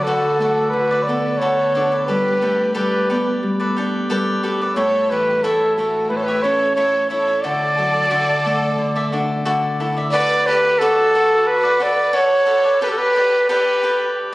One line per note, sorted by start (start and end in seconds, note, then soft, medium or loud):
0.00 0.39 A3 medium
0.00 1.15 D4 medium
0.00 0.67 F#4 medium
0.00 0.71 A4 medium
0.00 0.88 D5 medium
0.05 0.72 D3 medium
0.05 0.39 F#4 medium
0.05 0.40 A4 medium
0.05 0.41 B4 medium
0.05 0.41 D5 medium
0.39 2.42 A3 medium
0.39 0.90 F#4 soft
0.39 0.91 A4 medium
0.39 0.91 B4 medium
0.39 0.89 D5 medium
0.68 1.05 F#4 medium
0.68 1.05 B4 medium
0.73 1.40 D3 medium
0.91 1.08 A4 soft
0.91 1.08 B4 soft
0.91 1.07 D5 medium
1.03 1.38 B4 medium
1.03 1.40 D5 medium
1.07 3.10 B3 medium
1.07 1.40 F#4 soft
1.07 1.41 A4 medium
1.07 1.41 B4 soft
1.07 1.42 D5 soft
1.38 2.12 D3 medium
1.38 1.74 F#4 medium
1.38 1.99 A4 medium
1.38 2.02 C#5 loud
1.42 1.74 A4 medium
1.42 1.75 B4 medium
1.75 3.77 D4 medium
1.75 1.91 F#4 soft
1.75 1.91 A4 medium
1.75 1.92 B4 medium
1.75 1.90 D5 medium
1.92 2.07 A4 soft
1.92 2.08 B4 soft
1.92 2.08 D5 medium
2.00 2.07 A4 medium
2.00 2.07 C#5 medium
2.06 2.74 G3 medium
2.06 2.71 G4 medium
2.06 2.40 G4 medium
2.06 2.41 A4 medium
2.06 2.74 B4 medium
2.06 2.41 B4 medium
2.06 2.41 D5 medium
2.42 5.75 A3 medium
2.42 2.73 G4 soft
2.42 2.73 A4 medium
2.42 2.74 B4 soft
2.42 2.74 D5 medium
2.72 3.42 G3 medium
2.72 3.37 G4 medium
2.72 3.09 G4 medium
2.72 3.08 A4 medium
2.72 3.38 B4 medium
2.72 3.09 B4 medium
2.72 3.09 D5 medium
3.10 6.21 B3 medium
3.10 3.60 G4 medium
3.10 3.59 A4 medium
3.10 3.59 B4 medium
3.10 3.58 D5 medium
3.43 4.08 G3 medium
3.60 3.76 A4 soft
3.60 3.77 B4 medium
3.60 3.77 D5 medium
3.77 6.50 D4 medium
3.77 4.09 G4 medium
3.77 4.09 A4 medium
3.77 4.10 B4 medium
3.77 4.10 D5 medium
4.09 4.81 G3 medium
4.09 4.42 G4 medium
4.09 4.42 A4 medium
4.09 4.43 B4 medium
4.09 4.44 D5 medium
4.43 4.60 G4 medium
4.43 6.79 G4 medium
4.43 4.60 A4 medium
4.43 4.60 B4 medium
4.43 4.60 D5 medium
4.61 4.76 A4 soft
4.61 4.77 B4 soft
4.61 4.77 D5 soft
4.76 5.42 A2 loud
4.76 5.10 E4 medium
4.76 5.08 A4 medium
4.76 5.11 A4 medium
4.76 5.12 C#5 medium
4.76 5.11 C#5 medium
4.76 5.11 E5 medium
5.09 7.49 E3 medium
5.09 5.43 E4 soft
5.09 5.43 G4 medium
5.09 5.43 A4 medium
5.09 5.44 B4 medium
5.09 5.43 C#5 soft
5.09 5.44 E5 medium
5.43 6.09 A2 medium
5.43 5.77 E4 medium
5.43 5.76 A4 medium
5.43 5.77 A4 medium
5.43 5.78 C#5 medium
5.43 5.78 E5 medium
5.76 8.45 A3 medium
5.76 6.27 E4 soft
5.76 6.07 F#4 medium
5.76 6.10 A4 medium
5.76 6.28 A4 medium
5.76 6.27 C#5 medium
5.76 6.27 E5 medium
6.08 6.76 A2 medium
6.08 6.16 E4 medium
6.08 6.18 B4 medium
6.17 6.24 A4 medium
6.17 6.25 C#5 medium
6.23 6.44 G4 medium
6.23 6.44 B4 medium
6.28 6.42 A4 soft
6.28 6.43 C#5 medium
6.28 6.44 E5 medium
6.42 7.49 C#4 medium
6.42 6.76 E4 soft
6.42 6.74 A4 medium
6.42 6.76 A4 soft
6.42 6.74 C#5 loud
6.42 6.76 C#5 medium
6.42 6.76 E5 medium
6.75 7.49 A2 medium
6.75 7.09 E4 medium
6.75 7.08 A4 medium
6.75 7.09 A4 medium
6.75 7.07 C#5 loud
6.75 7.10 C#5 medium
6.75 7.10 E5 medium
7.09 7.27 E4 medium
7.09 9.73 E4 medium
7.09 7.40 A4 medium
7.09 7.27 A4 medium
7.09 7.43 C#5 medium
7.09 7.27 C#5 medium
7.09 7.26 E5 medium
7.28 7.43 A4 soft
7.28 7.44 C#5 soft
7.28 7.43 E5 soft
7.41 8.09 D3 medium
7.41 7.76 F#4 medium
7.41 9.44 A4 medium
7.41 7.77 A4 medium
7.41 9.44 D5 loud
7.41 7.78 D5 medium
7.41 7.77 E5 medium
7.77 8.16 F#3 medium
7.77 8.09 F#4 soft
7.77 8.10 A4 medium
7.77 8.10 D5 soft
7.77 8.10 E5 soft
8.11 8.77 D3 medium
8.11 8.44 F#4 medium
8.11 8.45 A4 medium
8.11 8.45 D5 medium
8.11 8.45 E5 medium
8.45 11.78 A3 medium
8.45 8.95 F#4 medium
8.45 8.95 A4 medium
8.45 8.94 D5 medium
8.45 8.95 E5 medium
8.78 9.45 D3 medium
8.96 9.12 A4 soft
8.96 9.13 D5 medium
8.96 9.12 E5 medium
9.12 11.93 D4 medium
9.12 9.44 F#4 soft
9.12 9.44 A4 soft
9.12 9.45 D5 medium
9.12 9.45 E5 medium
9.45 10.18 D3 medium
9.45 9.79 F#4 medium
9.45 9.79 A4 medium
9.45 9.81 D5 medium
9.45 9.79 E5 medium
9.80 12.41 E4 medium
9.80 9.96 F#4 soft
9.80 9.97 A4 medium
9.80 9.95 D5 soft
9.80 9.96 E5 medium
9.97 10.12 A4 soft
9.97 10.13 D5 soft
9.97 10.13 E5 soft
10.12 10.47 F#4 medium
10.12 10.47 A4 medium
10.12 10.44 B4 loud
10.12 10.47 B4 medium
10.12 10.48 D5 loud
10.12 10.48 D5 medium
10.47 10.80 G4 medium
10.47 10.80 A4 medium
10.47 10.80 B4 loud
10.47 10.81 B4 medium
10.47 10.81 D5 medium
10.79 11.46 F#4 medium
10.79 11.13 F#4 medium
10.79 11.49 A4 loud
10.79 11.14 A4 medium
10.79 11.14 B4 medium
10.79 11.15 D5 loud
11.14 11.64 F#4 medium
11.14 11.64 A4 medium
11.14 11.63 B4 medium
11.14 11.62 D5 medium
11.47 11.81 F#4 loud
11.47 11.84 B4 loud
11.63 11.79 A4 medium
11.63 11.79 B4 medium
11.63 11.80 D5 medium
11.80 12.12 F#4 medium
11.80 12.12 A4 medium
11.80 12.12 B4 medium
11.80 12.14 B4 medium
11.80 12.14 D5 medium
11.80 12.16 D5 loud
12.13 12.45 F#4 medium
12.13 12.45 A4 medium
12.13 12.81 A4 medium
12.13 12.46 B4 medium
12.13 12.81 C#5 loud
12.46 12.63 F#4 medium
12.46 12.63 A4 medium
12.46 12.64 B4 medium
12.46 12.63 D5 medium
12.64 12.81 A4 soft
12.64 12.81 B4 medium
12.64 12.80 D5 medium
12.81 13.14 G4 medium
12.81 12.88 G4 medium
12.81 13.15 A4 medium
12.81 12.91 B4 loud
12.81 13.15 B4 medium
12.81 13.15 D5 medium
12.89 12.96 F#4 medium
12.89 12.99 A4 medium
12.97 13.48 G4 medium
12.97 13.49 B4 loud
13.15 13.47 G4 medium
13.15 13.48 A4 medium
13.15 13.48 B4 medium
13.15 13.48 D5 medium
13.49 13.82 G4 medium
13.49 14.11 G4 medium
13.49 13.82 A4 medium
13.49 13.82 B4 loud
13.49 14.11 B4 loud
13.49 13.83 D5 medium
13.83 14.32 G4 medium
13.83 14.32 A4 medium
13.83 14.32 B4 medium
13.83 14.31 D5 medium